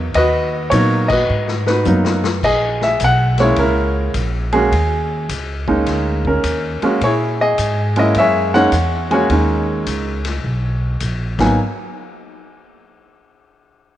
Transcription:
Already playing: E2 F#4
0.14 D#2 F#4 B4 D#5, kick, ride
0.70 A#2 F#3 A#3 B3 D#4 C#5, kick, hi-hat pedal, ride
1.08 F#4 B4 D#5, kick, crash
1.30 G#2
1.48 snare
1.67 D#4 F#4 B4, snare
1.85 F#2 F#3 A#3 B3 D#4, hi-hat pedal, high tom
2.05 snare
2.24 snare
2.43 A#1 G#4 D#5, kick, crash
2.81 E5, snare
3.00 B1, kick, hi-hat pedal, ride
3.04 F#5
3.38 G#3 A#3 C#4 E4 C#5, snare, ride
3.56 C#2 C#4 E4 A#4, kick, ride
4.14 A#1, kick, hi-hat pedal, ride
4.52 G#3 A#3 C#4 F#4 G#4, ride
4.72 D#2, kick, ride
5.29 C#2, kick, hi-hat pedal, ride
5.68 G#3 A#3 C#4 D#4, kick
5.86 D2, kick, snare, ride
6.25 C#4 A#4, kick
6.43 D#2, kick, hi-hat pedal, ride
6.82 G#3 A#3 C#4 F#4, muted upright bass stroke, ride
7.01 A#2 E4 G#4 C#5, kick, ride
7.41 G#4 D#5
7.58 G#2, kick, hi-hat pedal, ride
7.96 G#3 A#3 C#4 E4 D#5, ride
8.14 F#2 E5, kick, ride
8.19 G#4 C#5
8.54 G#3 A#3 C#4 D#4 C#5 F#5, snare
8.72 E2, kick, hi-hat pedal, ride
9.11 G#3 A#3 C#4 F#4 C#5 G#5, ride
9.29 D#2 G#3 A#3 C#4 D#4, kick, ride
9.86 C#2, kick, hi-hat pedal, ride
10.25 snare, ride
10.44 B1, kick
11.00 A#1, kick, hi-hat pedal, ride
11.38 G#1 F#3 A#3 B3 D#4 G#5, kick, snare, crash

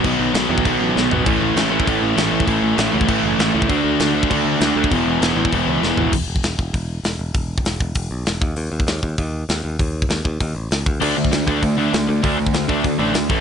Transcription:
Already playing: B2 F#3 B3
0.04 B1 B2 D#3 F#3 B3 F#4, kick, crash
0.19 B1
0.34 B1 B2 D#3 F#3 B3 F#4, snare, crash
0.49 E2 B2 D#3 F#3 B3 F#4
0.58 kick
0.65 B1 B2 D#3 F#3 B3 F#4, kick, crash
0.80 A1
0.95 B1 B2 D#3 F#3 B3 F#4, snare
1.10 G#1 B2 D#3 F#3 B3 F#4, floor tom
1.24 A1 A2 E3 A3 C#4 E4, kick, crash
1.41 A1
1.55 A1 A2 E3 A3 C#4 E4, snare, crash
1.69 A2 E3 A3 C#4 E4
1.80 kick
1.85 A1 A2 E3 A3 C#4 E4, kick, crash
2.02 A1
2.15 A1 A2 E3 A3 C#4 E4, snare, crash
2.31 A1 A2 E3 A3 C#4 E4
2.40 kick
2.46 A1 A2 E3 A3 C#4 E4, kick, crash
2.63 A1
2.76 A1 A2 E3 A3 C#4 E4, snare, crash
2.92 C#2 A2 E3 A3 C#4 E4
3.01 kick
3.07 A1 A2 E3 A3 C#4 E4, kick, crash
3.23 F#1
3.38 A1 A2 E3 A3 C#4 E4, snare, crash
3.53 C#2 A2 E3 A3 C#4 E4
3.62 kick
3.68 D2 D3 A3 D4 F#4, kick, crash
3.84 D2
3.99 D2 D3 A3 D4 F#4, snare, crash
4.14 D3 A3 D4 F#4
4.23 kick
4.30 D2 D3 A3 D4 F#4, kick, crash
4.45 D2
4.61 D2 D3 A3 D4 F#4, snare, crash
4.75 D2 D3 A3 D4 F#4
4.84 kick
4.90 E1 E2 B2 E3 G#3 B3 E4, kick, crash
5.06 E1
5.21 E1 E2 B2 E3 G#3 B3 E4, snare, crash
5.36 A1 E2 B2 E3 G#3 B3 E4
5.45 kick
5.52 E1 E2 B2 E3 G#3 B3 E4, kick, crash
5.66 C#2
5.82 E1 E2 B2 E3 G#3 B3 E4, snare
5.97 G#1 E2 B2 E3 G#3 B3 E4, floor tom
6.13 E1, kick, crash
6.28 E1
6.36 kick
6.43 E1, snare, open hi-hat
6.58 E1, kick
6.73 E1, kick, open hi-hat
7.03 E1, snare, open hi-hat
7.19 E1
7.34 E1, kick, open hi-hat
7.58 kick
7.65 E1, snare, open hi-hat
7.80 E1, kick
7.95 E1, kick, open hi-hat
8.11 B1
8.25 E1, snare, open hi-hat
8.41 D#2, kick
8.56 D#2, open hi-hat
8.72 D#2
8.80 kick
8.87 D#2, snare, open hi-hat
9.03 D#2, kick
9.18 D#2, kick, open hi-hat
9.49 D#2, snare, open hi-hat
9.64 D#2
9.79 D#2, kick, open hi-hat
10.02 kick
10.09 D#2, snare, open hi-hat
10.25 D#2, kick
10.41 D#2, kick, open hi-hat
10.55 A1
10.71 C#2, snare, open hi-hat
10.86 D2, kick
11.00 D2 D3 A3 D4, crash
11.16 D2 D3 A3
11.25 kick
11.31 D2 D3 A3, snare, open hi-hat
11.47 D2 D3 A3 D4, kick
11.62 D2 D3 A3, kick, open hi-hat
11.77 D3 A3 D4
11.93 D2 D3 A3, snare, open hi-hat
12.08 D2 D3 A3
12.23 D2 D3 A3 D4, kick, open hi-hat
12.38 D3 A3
12.46 kick
12.54 D2 D3 A3, snare, open hi-hat
12.68 D2 D3 A3 D4, kick
12.84 D2 D3 A3, kick, open hi-hat
12.99 A1 D3 A3 D4
13.14 D2 D3 A3, snare, open hi-hat
13.29 A1 A2 E3 A3, kick

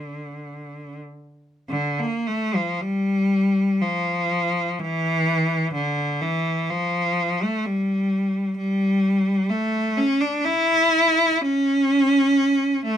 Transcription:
Already playing: D3
1.69 D3
1.99 A#3
2.27 A3
2.55 F3
2.81 G3
3.81 F3
4.79 E3
5.74 D3
6.21 E3
6.70 F3
7.42 A3
7.66 G3
8.57 G3
9.50 A3
9.97 C#4
10.21 D4
10.44 E4
11.42 C#4
12.85 A3

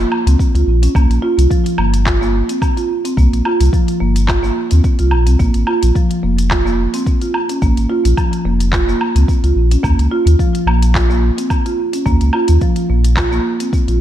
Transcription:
0.00 A#3
0.12 low woodblock
0.26 C#2 C4, closed hi-hat, shaker
0.39 kick, shaker
0.54 C#2 F4, closed hi-hat, shaker
0.67 A#1
0.83 C#4, closed hi-hat, shaker
0.95 C2 A#3, kick, low woodblock, shaker
1.09 A#1, closed hi-hat, shaker
1.22 F4
1.38 C2, closed hi-hat, shaker
1.50 F3, kick, shaker
1.66 closed hi-hat, shaker
1.78 G1 A#3, low woodblock
1.94 closed hi-hat, shaker
2.06 F4, kick, clap, shaker
2.21 A#3, shaker
2.49 C4, closed hi-hat, shaker
2.62 kick, low woodblock, shaker
2.77 F4, closed hi-hat, shaker
3.05 C4, closed hi-hat, shaker
3.17 C2 A#3, kick, shaker
3.32 A#1, closed hi-hat, shaker
3.45 F4, low woodblock
3.60 C2, closed hi-hat, shaker
3.73 F3, kick, shaker
3.88 closed hi-hat, shaker
4.00 G1 A#3
4.16 closed hi-hat, shaker
4.28 F4, kick, clap, low woodblock, shaker
4.43 A#3, shaker
4.71 D#2 C4, closed hi-hat, shaker
4.84 kick, shaker
4.99 C2 F4, closed hi-hat, shaker
5.11 A#1, low woodblock
5.27 C2 C4, closed hi-hat, shaker
5.39 A#1 A#3, kick, shaker
5.54 G#1, closed hi-hat, shaker
5.67 F4, low woodblock
5.83 A#1, closed hi-hat, shaker
5.95 F3, kick, shaker
6.11 closed hi-hat, shaker
6.23 F1 A#3
6.38 closed hi-hat, shaker
6.51 F4, kick, clap, low woodblock, shaker
6.66 A#3, shaker
6.94 C4, closed hi-hat, shaker
7.06 kick, shaker
7.21 F4, closed hi-hat, shaker
7.34 low woodblock
7.49 C#4, closed hi-hat, shaker
7.62 A#1 A#3, kick, shaker
7.77 G#1, closed hi-hat, shaker
7.90 F4
8.05 A#1, closed hi-hat, shaker
8.17 F3, kick, low woodblock, shaker
8.33 closed hi-hat, shaker
8.45 F1 A#3
8.60 closed hi-hat, shaker
8.73 F4, kick, clap, shaker
8.89 A#3, shaker
9.01 low woodblock
9.15 C#2 C4, closed hi-hat, shaker
9.28 kick, shaker
9.43 C#2 F4, closed hi-hat, shaker
9.56 A#1
9.71 C#4, closed hi-hat, shaker
9.83 D#2 A#3, kick, low woodblock, shaker
9.98 C#2, closed hi-hat, shaker
10.11 F4
10.26 D#2, closed hi-hat, shaker
10.39 F3, kick, shaker
10.55 closed hi-hat, shaker
10.66 A#1 A#3, low woodblock
10.83 closed hi-hat, shaker
10.95 F4, kick, clap, shaker
11.10 A#3, shaker
11.38 C4, closed hi-hat, shaker
11.50 kick, low woodblock, shaker
11.66 F4, closed hi-hat, shaker
11.93 C#4, closed hi-hat, shaker
12.06 D#2 A#3, kick, shaker
12.21 C#2, closed hi-hat, shaker
12.33 F4, low woodblock
12.48 D#2, closed hi-hat, shaker
12.61 F3, kick, shaker
12.76 closed hi-hat, shaker
12.89 A#1 A#3
13.04 closed hi-hat, shaker
13.17 F4, kick, clap, low woodblock, shaker
13.32 A#3, shaker
13.60 C4, closed hi-hat, shaker
13.73 kick, shaker
13.88 A#1 F4, closed hi-hat, shaker

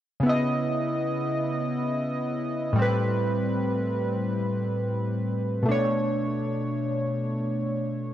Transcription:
0.20 C#3 B3
0.26 E4 D#5
2.73 A2 G3
2.79 C4 B4
5.62 B2 A3
5.68 D4 C#5

